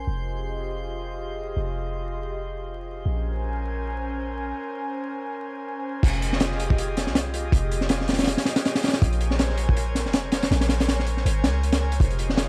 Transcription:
Already playing: C5 C6
0.07 F1 F4 G4 G#4 D#5
1.56 F1
3.05 A#1 C#4 A#4 C5 G#5
6.03 F1 F4 G4 G#4 D#5, kick, closed hi-hat, crash
6.13 closed hi-hat
6.22 closed hi-hat
6.33 snare
6.40 snare, closed hi-hat
6.51 snare
6.60 closed hi-hat
6.70 kick
6.78 closed hi-hat
6.97 snare, closed hi-hat
7.07 C2, snare
7.15 snare, closed hi-hat
7.34 F4 G4 G#4 D#5, closed hi-hat
7.52 F1 F4 G4 G#4 D#5, kick, closed hi-hat
7.72 closed hi-hat
7.81 snare
7.89 snare, closed hi-hat
8.01 snare
8.08 snare, closed hi-hat
8.13 snare, closed hi-hat
8.19 snare, closed hi-hat
8.23 snare, closed hi-hat
8.27 F4 G4 G#4 D#5, snare, closed hi-hat
8.37 snare, closed hi-hat
8.45 snare, closed hi-hat
8.56 snare, closed hi-hat
8.65 snare, closed hi-hat
8.75 snare, closed hi-hat
8.83 F4 G4 G#4 D#5, snare, closed hi-hat
8.88 snare, closed hi-hat
8.93 snare, closed hi-hat
9.02 A#1 A#4 C5 C#5 G#5, kick, closed hi-hat
9.13 closed hi-hat
9.21 closed hi-hat
9.31 snare
9.39 snare, closed hi-hat
9.49 snare
9.58 closed hi-hat
9.69 kick
9.77 closed hi-hat
9.95 snare, closed hi-hat
10.05 F1, snare
10.13 snare, closed hi-hat
10.32 A#4 C5 C#5 G#5, snare, closed hi-hat
10.43 snare, closed hi-hat
10.51 A#1 A#4 C5 C#5 G#5, snare, closed hi-hat
10.61 snare, closed hi-hat
10.69 snare, closed hi-hat
10.80 snare, closed hi-hat
10.88 snare, closed hi-hat
10.99 snare
11.07 closed hi-hat
11.17 snare
11.25 G#1 A#4 C5 C#5 G#5, closed hi-hat
11.44 C#2, snare, closed hi-hat
11.63 closed hi-hat
11.72 snare, closed hi-hat
11.81 A#4 C5 C#5 G#5
11.92 closed hi-hat
12.00 F1 F4 G4 G#4 D#5, kick, closed hi-hat
12.10 closed hi-hat
12.19 closed hi-hat
12.29 snare
12.37 snare, closed hi-hat

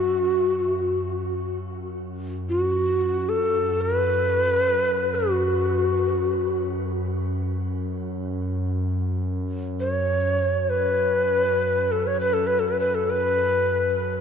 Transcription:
Already playing: F#2 F#4
2.49 F#4
3.29 A4
3.50 F#2
3.81 B4
5.15 F#4
9.80 C#5
10.70 B4
11.91 A4
12.07 C#5
12.21 B4
12.33 A4
12.47 B4
12.59 A4
12.68 B4
12.80 B4
12.95 A4
13.10 B4

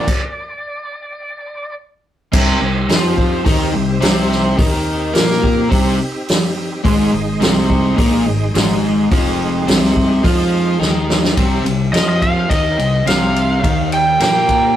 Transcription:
Already playing: D5
0.08 kick, crash
2.32 C2 C3 C4 D#4 G4 C5, kick, crash
2.61 C2 C3
2.89 F2 F3 F4, snare, open hi-hat
3.18 kick
3.45 D#2 D#3 D#4, kick, open hi-hat
3.74 C2 C3
4.00 C2 C3 C4, snare, open hi-hat
4.32 snare
4.57 D#2 D#3 C4 D#4 G4, kick, open hi-hat
5.14 A#2 A#3 A#4, snare, open hi-hat
5.31 snare
5.43 kick
5.69 C2 C3 C4, kick, open hi-hat
6.28 snare, open hi-hat
6.84 G#1 G#2 G#3 D#4 G#4 D#5, kick, open hi-hat
7.12 G#1 G#2
7.40 C2 C3 C4, snare, open hi-hat
7.70 kick
7.96 A#1 A#2 A#3, kick, open hi-hat
8.26 G#1 G#2
8.54 G#1 G#2 G#3, snare, open hi-hat
9.11 F1 F2 F3 G#3 D#4 G#4 D#5, kick, open hi-hat
9.67 C2 C3 C4, snare, open hi-hat
9.84 snare
9.96 kick
10.23 F2 F3 F4, kick, open hi-hat
10.79 D#2 D#3 D#4, snare
11.08 A3 B3, snare
11.13 C4 D4
11.19 E4 F4
11.24 G4 A4, snare
11.30 B4 C5
11.36 C2 C3 C4 D#4 G4 C5 D5, kick, ride
11.64 C2 C3, ride
11.93 F2 F3 F4 D#5, snare, ride
12.09 D#5
12.22 F5, kick, ride
12.49 D#2 D#3 D#4 D#5, kick, ride
12.78 C2 C3, ride
13.06 C2 C3 C4 F5, snare, ride
13.36 ride
13.62 D#2 D#3 D#4 G4 C5, kick, ride
13.92 G5, ride
14.20 A#2 A#3 A#4 G5, snare, ride
14.49 kick, ride

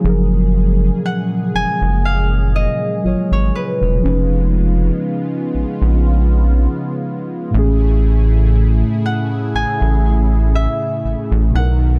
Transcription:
0.01 F#1 A#2 C#3 F3 F#3 G#3 G#4
0.06 G#4 A#4
1.06 F#5
1.55 F#1 G#5
1.82 F#1
2.05 F5
2.56 D#5
3.03 G#1 F#3 F4 G#4
3.07 C#5
3.32 G#1 C#5
3.55 B4
3.82 E1
4.01 C#3 F3 B3 C#4 F4
4.05 F1 D#4
4.09 B4
5.55 A#1
5.82 A#1
7.51 A1 A2 C#3 A3 E4 G#4
7.56 C#4 G#4
9.06 F#5
9.55 A1 G#5
9.82 A1
10.55 E5
11.05 A1
11.32 A1
11.51 B1 B2 D#3 B3 F#4 A#4
11.55 D#4 A#4 F#5

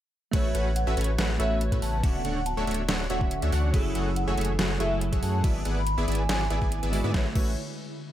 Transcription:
0.31 A1 C#3 A3 B3 C#4 F#4 B4 C#5 E5, kick, closed hi-hat, crash
0.54 A1 A3 C#4 F#4 B4 F#5, closed hi-hat
0.76 F#5, closed hi-hat
0.87 A1 A3 C#4 F#4 B4 E5
0.97 A1 A3 C#4 F#4 B4 C#5, closed hi-hat
1.01 closed hi-hat
1.04 closed hi-hat
1.18 A1 A3 C#4 F#4 B4 F#5, snare, closed hi-hat
1.38 A1 A3 C#4 F#4 B4 C#5 E5, closed hi-hat
1.61 closed hi-hat
1.72 A2 A3 C#4 F#4 B4 E5, kick, closed hi-hat
1.82 A1 A3 C#4 F#4 B4 F#5 A5, open hi-hat
2.03 D1 D3 E3 A3 C#4 D4 F#4 C#5 E5 F#5, kick, closed hi-hat, crash
2.15 F#5
2.25 D1 A3 D4 F#4 C#5 F#5, closed hi-hat
2.46 A5, closed hi-hat
2.57 D1 A3 D4 F#4 C#5 E5
2.67 D1 A3 D4 F#4 C#5 E5, closed hi-hat
2.71 closed hi-hat
2.74 closed hi-hat
2.89 D1 A3 D4 F#4 C#5 F#5, snare, closed hi-hat
3.10 D1 A3 D4 F#4 C#5 E5 F#5, closed hi-hat
3.19 D3 C#4 F#4 F#5, kick
3.23 E5
3.31 closed hi-hat
3.42 D2 A3 D4 F#4 C#5 E5, closed hi-hat
3.52 D2 A3 D4 F#4 C#5 F#5, open hi-hat
3.72 F#1 E3 F#3 A3 E4 F#4 G#4 C#5 E5 G#5, kick, closed hi-hat, crash
3.76 A4
3.95 F#1 A3 F#4 G#4 C#5 F#5, closed hi-hat
4.16 F#5, closed hi-hat
4.27 F#1 A3 F#4 G#4 C#5 E5
4.38 F#1 A3 F#4 G#4 C#5 E5, closed hi-hat
4.41 closed hi-hat
4.45 closed hi-hat
4.59 F#1 A3 F#4 G#4 C#5 F#5, snare, closed hi-hat
4.78 F#1 F#3 A3 E4 F#4 G#4 C#5 E5, closed hi-hat
4.82 A4
5.01 closed hi-hat
5.12 F#1 A3 F#4 G#4 C#5 E5, kick, closed hi-hat
5.23 F#2 A3 F#4 G#4 C#5 F#5 A5, open hi-hat
5.43 G#1 D3 G#3 B3 E4 F#4 G#4 D5 E5, kick, closed hi-hat, crash
5.65 G#1 B3 E4 G#4 D5 F#5, closed hi-hat
5.76 B5
5.87 B5, closed hi-hat
5.98 G#1 B3 E4 G#4 D5 E5
6.08 G#1 B3 E4 G#4 D5 E5, closed hi-hat
6.12 closed hi-hat
6.15 closed hi-hat
6.19 G#5
6.29 G#1 B3 E4 G#4 D5 F#5, snare, closed hi-hat
6.50 G#1 B3 E4 G#4 D5 E5, closed hi-hat
6.62 G#1 B3 E4 G#4 D5 G#5, kick
6.72 closed hi-hat
6.83 G#1 B3 E4 G#4 D5 E5, closed hi-hat
6.92 G#3 E4 F#4 D5, open hi-hat
7.04 G#2 B3 E4 G#4 D5 E5
7.11 A1 A3 F#4 B4 E5, kick, snare
7.17 C#5
7.33 A1 A3 C#4 F#4 B4 E5, kick, crash
7.39 C#5

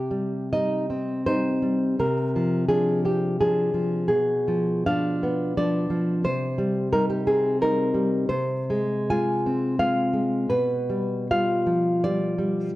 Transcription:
Already playing: C3 G4
0.11 G3
0.53 G3 D#4 D#5
0.90 C4
1.26 G3 D#4 C5
1.62 G3
1.99 C3 A#4
2.36 F3
2.69 F3 D4 G#4
3.05 C4 G4
3.41 F3 D4 G#4
3.74 F3
4.08 B2 G#4
4.48 F3
4.86 F3 D4 F5
5.23 B3
5.57 F3 D4 D5
5.90 F3
6.24 C3 C5
6.58 G3
6.93 G3 D#4 A#4
7.10 G4
7.27 C4 G#4
7.61 G3 D#4 A#4
7.94 G3
8.29 C3 C5
8.70 G#3
9.10 G#3 F4 G#5
9.46 C4
9.79 G#3 F4 F5
10.13 G#3
10.50 B2 B4
10.90 G3
11.31 G3 F4 F5
11.66 F3
12.04 G3 F4 D5
12.38 G3

